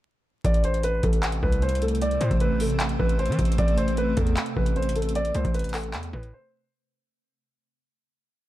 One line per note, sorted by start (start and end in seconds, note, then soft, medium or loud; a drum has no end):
0.44 1.01 A1 loud
0.44 6.68 C3 medium
0.44 6.68 A3 medium
0.44 6.68 C4 loud
0.44 0.63 D5 loud
0.44 kick loud
0.44 closed hi-hat medium
0.54 closed hi-hat soft
0.64 0.83 C5 medium
0.64 closed hi-hat medium
0.74 closed hi-hat medium
0.83 1.02 B4 loud
0.83 closed hi-hat medium
1.03 1.41 A1 loud
1.03 1.40 A4 medium
1.03 kick loud
1.03 closed hi-hat medium
1.13 closed hi-hat medium
1.23 clap loud
1.23 closed hi-hat loud
1.32 closed hi-hat medium
1.43 2.18 C2 loud
1.43 1.61 B4 medium
1.43 kick medium
1.52 closed hi-hat medium
1.62 1.81 C5 medium
1.62 closed hi-hat soft
1.69 closed hi-hat medium
1.75 closed hi-hat medium
1.82 2.00 A4 medium
1.82 closed hi-hat medium
1.88 closed hi-hat medium
1.95 closed hi-hat medium
2.01 2.20 D5 loud
2.01 closed hi-hat medium
2.11 closed hi-hat soft
2.20 2.30 A2 loud
2.20 2.39 C5 medium
2.20 closed hi-hat medium
2.31 2.97 A1 loud
2.31 kick loud
2.31 closed hi-hat medium
2.40 2.59 B4 medium
2.40 closed hi-hat medium
2.60 2.98 A4 medium
2.60 open hi-hat medium
2.70 closed hi-hat medium
2.80 clap loud
2.80 closed hi-hat loud
2.89 closed hi-hat medium
2.99 3.30 A1 loud
2.99 3.18 B4 medium
2.99 kick medium
3.09 closed hi-hat medium
3.19 3.56 C5 medium
3.19 closed hi-hat soft
3.26 3.38 E3 loud
3.26 closed hi-hat medium
3.32 closed hi-hat medium
3.39 3.58 A1 loud
3.39 kick medium
3.39 closed hi-hat medium
3.45 closed hi-hat medium
3.52 closed hi-hat medium
3.58 4.15 A1 loud
3.58 3.77 D5 loud
3.58 kick loud
3.58 closed hi-hat medium
3.68 closed hi-hat soft
3.77 3.96 C5 medium
3.77 closed hi-hat medium
3.88 closed hi-hat medium
3.97 4.16 B4 medium
3.97 closed hi-hat medium
4.17 4.36 E2 loud
4.17 4.54 A4 medium
4.17 kick loud
4.17 closed hi-hat medium
4.27 closed hi-hat medium
4.37 clap loud
4.37 closed hi-hat loud
4.46 closed hi-hat medium
4.56 5.32 A1 loud
4.56 4.75 B4 medium
4.56 kick medium
4.66 closed hi-hat medium
4.76 4.95 C5 medium
4.76 closed hi-hat soft
4.82 closed hi-hat medium
4.89 closed hi-hat medium
4.96 5.14 A4 medium
4.96 closed hi-hat medium
5.02 closed hi-hat medium
5.09 closed hi-hat medium
5.15 5.34 D5 loud
5.15 closed hi-hat medium
5.25 closed hi-hat soft
5.34 5.44 C2 loud
5.34 5.53 C5 medium
5.34 closed hi-hat medium
5.45 5.95 A1 loud
5.45 kick loud
5.45 closed hi-hat soft
5.54 5.73 B4 medium
5.54 closed hi-hat medium
5.59 closed hi-hat medium
5.64 closed hi-hat medium
5.69 closed hi-hat medium
5.74 6.11 A4 medium
5.74 clap loud
5.74 open hi-hat medium
5.83 closed hi-hat medium
5.94 6.12 E2 loud
5.94 clap loud
5.94 closed hi-hat loud
6.03 closed hi-hat medium
6.13 6.32 A2 loud
6.13 6.32 B4 medium
6.13 kick medium
6.23 closed hi-hat medium
6.33 6.70 C5 medium